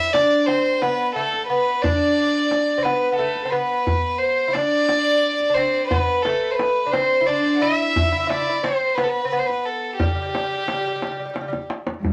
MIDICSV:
0, 0, Header, 1, 6, 480
1, 0, Start_track
1, 0, Tempo, 679502
1, 1296, Time_signature, 6, 3, 24, 8
1, 8568, End_track
2, 0, Start_track
2, 0, Title_t, "Violin section"
2, 0, Program_c, 0, 48
2, 0, Note_on_c, 0, 76, 88
2, 74, Note_off_c, 0, 76, 0
2, 95, Note_on_c, 0, 74, 77
2, 319, Note_off_c, 0, 74, 0
2, 335, Note_on_c, 0, 72, 81
2, 576, Note_off_c, 0, 72, 0
2, 580, Note_on_c, 0, 71, 78
2, 802, Note_off_c, 0, 71, 0
2, 811, Note_on_c, 0, 69, 79
2, 1049, Note_on_c, 0, 71, 76
2, 1054, Note_off_c, 0, 69, 0
2, 1276, Note_off_c, 0, 71, 0
2, 1293, Note_on_c, 0, 74, 83
2, 2013, Note_on_c, 0, 71, 76
2, 2015, Note_off_c, 0, 74, 0
2, 2435, Note_on_c, 0, 72, 59
2, 2445, Note_off_c, 0, 71, 0
2, 2487, Note_on_c, 0, 71, 75
2, 2491, Note_off_c, 0, 72, 0
2, 2970, Note_on_c, 0, 72, 73
2, 2972, Note_off_c, 0, 71, 0
2, 3213, Note_off_c, 0, 72, 0
2, 3215, Note_on_c, 0, 74, 90
2, 4176, Note_off_c, 0, 74, 0
2, 4179, Note_on_c, 0, 71, 80
2, 4895, Note_on_c, 0, 72, 76
2, 4898, Note_off_c, 0, 71, 0
2, 5326, Note_off_c, 0, 72, 0
2, 5331, Note_on_c, 0, 78, 66
2, 5379, Note_off_c, 0, 78, 0
2, 5379, Note_on_c, 0, 76, 82
2, 6043, Note_on_c, 0, 74, 51
2, 6049, Note_off_c, 0, 76, 0
2, 6095, Note_off_c, 0, 74, 0
2, 6097, Note_on_c, 0, 72, 75
2, 6337, Note_off_c, 0, 72, 0
2, 6339, Note_on_c, 0, 71, 67
2, 6426, Note_off_c, 0, 71, 0
2, 6435, Note_on_c, 0, 71, 69
2, 6567, Note_off_c, 0, 71, 0
2, 6583, Note_on_c, 0, 71, 75
2, 6640, Note_off_c, 0, 71, 0
2, 6646, Note_on_c, 0, 72, 52
2, 6676, Note_on_c, 0, 71, 69
2, 6679, Note_off_c, 0, 72, 0
2, 6817, Note_off_c, 0, 71, 0
2, 6830, Note_on_c, 0, 69, 61
2, 7058, Note_on_c, 0, 67, 67
2, 7064, Note_off_c, 0, 69, 0
2, 8259, Note_off_c, 0, 67, 0
2, 8568, End_track
3, 0, Start_track
3, 0, Title_t, "Violin"
3, 0, Program_c, 1, 40
3, 0, Note_on_c, 1, 76, 101
3, 88, Note_on_c, 1, 74, 97
3, 99, Note_off_c, 1, 76, 0
3, 324, Note_on_c, 1, 72, 89
3, 335, Note_off_c, 1, 74, 0
3, 578, Note_on_c, 1, 71, 89
3, 588, Note_off_c, 1, 72, 0
3, 809, Note_off_c, 1, 71, 0
3, 813, Note_on_c, 1, 69, 83
3, 1036, Note_off_c, 1, 69, 0
3, 1041, Note_on_c, 1, 71, 91
3, 1286, Note_on_c, 1, 74, 98
3, 1297, Note_off_c, 1, 71, 0
3, 1996, Note_on_c, 1, 71, 89
3, 2007, Note_off_c, 1, 74, 0
3, 2231, Note_off_c, 1, 71, 0
3, 2235, Note_on_c, 1, 69, 79
3, 2473, Note_on_c, 1, 71, 88
3, 2484, Note_off_c, 1, 69, 0
3, 2952, Note_on_c, 1, 72, 86
3, 2962, Note_off_c, 1, 71, 0
3, 3195, Note_on_c, 1, 74, 104
3, 3206, Note_off_c, 1, 72, 0
3, 3914, Note_on_c, 1, 72, 85
3, 3925, Note_off_c, 1, 74, 0
3, 4147, Note_off_c, 1, 72, 0
3, 4151, Note_on_c, 1, 71, 83
3, 4394, Note_on_c, 1, 69, 81
3, 4405, Note_off_c, 1, 71, 0
3, 4599, Note_on_c, 1, 72, 60
3, 4610, Note_off_c, 1, 69, 0
3, 4633, Note_on_c, 1, 71, 82
3, 4644, Note_off_c, 1, 72, 0
3, 4884, Note_on_c, 1, 72, 88
3, 4894, Note_off_c, 1, 71, 0
3, 5131, Note_on_c, 1, 74, 88
3, 5141, Note_off_c, 1, 72, 0
3, 5378, Note_on_c, 1, 76, 89
3, 5389, Note_off_c, 1, 74, 0
3, 5818, Note_off_c, 1, 76, 0
3, 5818, Note_on_c, 1, 76, 63
3, 5860, Note_on_c, 1, 74, 93
3, 5871, Note_off_c, 1, 76, 0
3, 6097, Note_on_c, 1, 72, 82
3, 6108, Note_off_c, 1, 74, 0
3, 6322, Note_on_c, 1, 71, 81
3, 6333, Note_off_c, 1, 72, 0
3, 6385, Note_on_c, 1, 69, 74
3, 6395, Note_off_c, 1, 71, 0
3, 6422, Note_on_c, 1, 71, 85
3, 6433, Note_off_c, 1, 69, 0
3, 6561, Note_off_c, 1, 71, 0
3, 6566, Note_on_c, 1, 71, 75
3, 6632, Note_on_c, 1, 72, 66
3, 6642, Note_off_c, 1, 71, 0
3, 6683, Note_on_c, 1, 71, 77
3, 6694, Note_off_c, 1, 72, 0
3, 6816, Note_on_c, 1, 69, 75
3, 6827, Note_off_c, 1, 71, 0
3, 7042, Note_off_c, 1, 69, 0
3, 7047, Note_on_c, 1, 67, 78
3, 8226, Note_off_c, 1, 67, 0
3, 8568, End_track
4, 0, Start_track
4, 0, Title_t, "Lute"
4, 0, Program_c, 2, 24
4, 0, Note_on_c, 2, 64, 84
4, 95, Note_off_c, 2, 64, 0
4, 97, Note_on_c, 2, 62, 79
4, 336, Note_on_c, 2, 60, 74
4, 344, Note_off_c, 2, 62, 0
4, 559, Note_off_c, 2, 60, 0
4, 577, Note_on_c, 2, 59, 78
4, 814, Note_off_c, 2, 59, 0
4, 817, Note_on_c, 2, 57, 70
4, 1054, Note_off_c, 2, 57, 0
4, 1057, Note_on_c, 2, 59, 70
4, 1298, Note_on_c, 2, 62, 86
4, 1304, Note_off_c, 2, 59, 0
4, 1961, Note_on_c, 2, 60, 55
4, 1988, Note_off_c, 2, 62, 0
4, 2008, Note_off_c, 2, 60, 0
4, 2011, Note_on_c, 2, 59, 74
4, 2195, Note_off_c, 2, 59, 0
4, 2203, Note_on_c, 2, 59, 54
4, 2248, Note_off_c, 2, 59, 0
4, 2251, Note_on_c, 2, 57, 70
4, 2435, Note_off_c, 2, 57, 0
4, 2438, Note_on_c, 2, 60, 54
4, 2485, Note_off_c, 2, 60, 0
4, 2488, Note_on_c, 2, 59, 75
4, 3163, Note_on_c, 2, 64, 58
4, 3183, Note_off_c, 2, 59, 0
4, 3201, Note_off_c, 2, 64, 0
4, 3204, Note_on_c, 2, 62, 74
4, 3874, Note_off_c, 2, 62, 0
4, 3883, Note_on_c, 2, 62, 55
4, 3933, Note_on_c, 2, 60, 73
4, 3934, Note_off_c, 2, 62, 0
4, 4171, Note_off_c, 2, 60, 0
4, 4174, Note_on_c, 2, 59, 78
4, 4414, Note_off_c, 2, 59, 0
4, 4417, Note_on_c, 2, 57, 72
4, 4848, Note_on_c, 2, 62, 57
4, 4860, Note_off_c, 2, 57, 0
4, 4895, Note_on_c, 2, 60, 74
4, 4897, Note_off_c, 2, 62, 0
4, 5091, Note_on_c, 2, 64, 56
4, 5092, Note_off_c, 2, 60, 0
4, 5139, Note_off_c, 2, 64, 0
4, 5146, Note_on_c, 2, 62, 75
4, 5376, Note_off_c, 2, 62, 0
4, 5379, Note_on_c, 2, 64, 78
4, 5727, Note_off_c, 2, 64, 0
4, 5736, Note_on_c, 2, 64, 74
4, 5784, Note_off_c, 2, 64, 0
4, 5793, Note_on_c, 2, 64, 59
4, 5834, Note_off_c, 2, 64, 0
4, 5842, Note_on_c, 2, 64, 68
4, 5889, Note_off_c, 2, 64, 0
4, 5898, Note_on_c, 2, 64, 58
4, 5936, Note_off_c, 2, 64, 0
4, 5944, Note_on_c, 2, 64, 62
4, 5994, Note_off_c, 2, 64, 0
4, 6002, Note_on_c, 2, 64, 57
4, 6057, Note_off_c, 2, 64, 0
4, 6098, Note_on_c, 2, 60, 66
4, 6338, Note_off_c, 2, 60, 0
4, 6341, Note_on_c, 2, 59, 74
4, 6529, Note_off_c, 2, 59, 0
4, 6532, Note_on_c, 2, 60, 55
4, 6580, Note_off_c, 2, 60, 0
4, 6587, Note_on_c, 2, 59, 73
4, 7059, Note_on_c, 2, 55, 67
4, 7077, Note_off_c, 2, 59, 0
4, 7108, Note_off_c, 2, 55, 0
4, 7118, Note_on_c, 2, 55, 43
4, 7162, Note_off_c, 2, 55, 0
4, 7170, Note_on_c, 2, 55, 49
4, 7209, Note_off_c, 2, 55, 0
4, 7217, Note_on_c, 2, 55, 41
4, 7259, Note_off_c, 2, 55, 0
4, 7268, Note_on_c, 2, 55, 48
4, 7302, Note_off_c, 2, 55, 0
4, 7310, Note_on_c, 2, 55, 38
4, 7361, Note_off_c, 2, 55, 0
4, 7370, Note_on_c, 2, 55, 42
4, 7408, Note_off_c, 2, 55, 0
4, 7417, Note_on_c, 2, 55, 36
4, 7460, Note_off_c, 2, 55, 0
4, 7469, Note_on_c, 2, 55, 38
4, 7521, Note_off_c, 2, 55, 0
4, 7529, Note_on_c, 2, 55, 34
4, 7572, Note_off_c, 2, 55, 0
4, 7581, Note_on_c, 2, 55, 40
4, 7627, Note_off_c, 2, 55, 0
4, 7635, Note_on_c, 2, 55, 36
4, 7674, Note_off_c, 2, 55, 0
4, 7683, Note_on_c, 2, 55, 40
4, 7730, Note_off_c, 2, 55, 0
4, 7739, Note_on_c, 2, 55, 35
4, 7788, Note_off_c, 2, 55, 0
4, 7796, Note_on_c, 2, 55, 42
4, 7843, Note_off_c, 2, 55, 0
4, 7851, Note_on_c, 2, 55, 40
4, 7900, Note_off_c, 2, 55, 0
4, 7908, Note_on_c, 2, 55, 42
4, 7942, Note_off_c, 2, 55, 0
4, 7950, Note_on_c, 2, 55, 39
4, 8000, Note_off_c, 2, 55, 0
4, 8008, Note_on_c, 2, 55, 45
4, 8051, Note_off_c, 2, 55, 0
4, 8060, Note_on_c, 2, 55, 38
4, 8102, Note_off_c, 2, 55, 0
4, 8111, Note_on_c, 2, 55, 47
4, 8165, Note_off_c, 2, 55, 0
4, 8568, End_track
5, 0, Start_track
5, 0, Title_t, "Cello"
5, 0, Program_c, 3, 42
5, 8497, Note_on_c, 3, 43, 65
5, 8568, Note_off_c, 3, 43, 0
5, 8568, End_track
6, 0, Start_track
6, 0, Title_t, "Tombak"
6, 102, Note_on_c, 9, 63, 72
6, 172, Note_off_c, 9, 63, 0
6, 338, Note_on_c, 9, 63, 66
6, 409, Note_off_c, 9, 63, 0
6, 579, Note_on_c, 9, 63, 66
6, 649, Note_off_c, 9, 63, 0
6, 938, Note_on_c, 9, 62, 25
6, 1009, Note_off_c, 9, 62, 0
6, 1300, Note_on_c, 9, 64, 86
6, 1371, Note_off_c, 9, 64, 0
6, 1774, Note_on_c, 9, 63, 61
6, 1845, Note_off_c, 9, 63, 0
6, 2015, Note_on_c, 9, 63, 57
6, 2086, Note_off_c, 9, 63, 0
6, 2255, Note_on_c, 9, 62, 28
6, 2326, Note_off_c, 9, 62, 0
6, 2369, Note_on_c, 9, 62, 25
6, 2439, Note_off_c, 9, 62, 0
6, 2733, Note_on_c, 9, 64, 84
6, 2804, Note_off_c, 9, 64, 0
6, 3212, Note_on_c, 9, 63, 67
6, 3283, Note_off_c, 9, 63, 0
6, 3452, Note_on_c, 9, 63, 71
6, 3522, Note_off_c, 9, 63, 0
6, 3813, Note_on_c, 9, 62, 24
6, 3884, Note_off_c, 9, 62, 0
6, 4174, Note_on_c, 9, 64, 84
6, 4245, Note_off_c, 9, 64, 0
6, 4415, Note_on_c, 9, 63, 69
6, 4486, Note_off_c, 9, 63, 0
6, 4658, Note_on_c, 9, 63, 72
6, 4729, Note_off_c, 9, 63, 0
6, 4899, Note_on_c, 9, 63, 68
6, 4970, Note_off_c, 9, 63, 0
6, 5262, Note_on_c, 9, 62, 24
6, 5333, Note_off_c, 9, 62, 0
6, 5624, Note_on_c, 9, 64, 91
6, 5694, Note_off_c, 9, 64, 0
6, 5865, Note_on_c, 9, 63, 68
6, 5936, Note_off_c, 9, 63, 0
6, 6104, Note_on_c, 9, 63, 71
6, 6175, Note_off_c, 9, 63, 0
6, 6342, Note_on_c, 9, 63, 67
6, 6413, Note_off_c, 9, 63, 0
6, 6707, Note_on_c, 9, 62, 25
6, 6778, Note_off_c, 9, 62, 0
6, 7062, Note_on_c, 9, 64, 89
6, 7132, Note_off_c, 9, 64, 0
6, 7309, Note_on_c, 9, 63, 69
6, 7380, Note_off_c, 9, 63, 0
6, 7545, Note_on_c, 9, 63, 70
6, 7616, Note_off_c, 9, 63, 0
6, 7787, Note_on_c, 9, 63, 62
6, 7857, Note_off_c, 9, 63, 0
6, 8023, Note_on_c, 9, 63, 58
6, 8094, Note_off_c, 9, 63, 0
6, 8144, Note_on_c, 9, 62, 63
6, 8214, Note_off_c, 9, 62, 0
6, 8264, Note_on_c, 9, 63, 75
6, 8335, Note_off_c, 9, 63, 0
6, 8382, Note_on_c, 9, 62, 81
6, 8453, Note_off_c, 9, 62, 0
6, 8508, Note_on_c, 9, 64, 73
6, 8568, Note_off_c, 9, 64, 0
6, 8568, End_track
0, 0, End_of_file